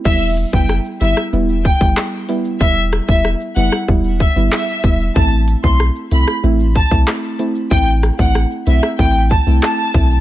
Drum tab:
CC |x---------------|----------------|----------------|----------------|
HH |--x---x---x---x-|--x---x---x---x-|--x---x---x---x-|--x---x---x---x-|
SH |xxxxxxxxxxxxxxxx|xxxxxxxxxxxxxxxx|xxxxxxxxxxxxxxxx|xxxxxxxxxxxxxxxx|
CP |------------x---|------------x---|------------x---|------------x---|
SD |----r--r----r---|--r-r--r----r---|----r--r----r---|--r-r--r----r---|
BD |o--o------oo----|o--o----o-o---o-|o--o------oo----|o--o----o-o---o-|